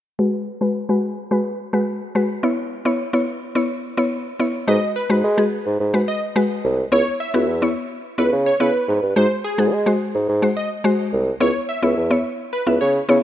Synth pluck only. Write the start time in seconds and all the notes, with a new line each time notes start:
0.19 G#3 F#4 B4
0.61 G#3 F#4 B4
0.89 G#3 F#4 B4
1.31 G#3 F#4 B4
1.73 G#3 F#4 B4
2.15 G#3 F#4 B4
2.43 B3 E4 C#5
2.85 B3 E4 C#5
3.13 B3 E4 C#5
3.55 B3 E4 C#5
3.97 B3 E4 C#5
4.39 B3 E4 C#5
4.68 G#3 F#4 B4
5.10 G#3 F#4 B4
5.38 G#3 F#4 G#4
5.94 G#3 F#4 B4
6.36 G#3 F#4 B4
6.92 B3 E4 C#5
7.34 B3 E4 F#4
7.62 B3 E4 C#5
8.18 B3 E4 C#5
8.60 B3 E4 C#5
9.16 G#3 F#4 C5
9.58 G#3 F#4 G#4
9.86 G#3 F#4 C5
10.42 G#3 F#4 C5
10.84 G#3 F#4 C5
11.40 B3 E4 C#5
11.83 B3 E4 C#5
12.11 B3 E4 C#5
12.67 B3 E4 E5
13.09 B3 E4 C#5